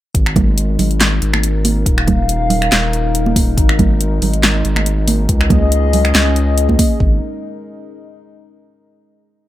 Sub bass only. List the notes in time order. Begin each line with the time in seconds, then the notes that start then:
0.15 G#1
0.79 G#1
1.22 G#1
1.86 D#1
2.72 D#1
3.58 G#1
4.22 G#1
4.65 G#1
5.29 C#2
6.15 C#2
7.00 G#1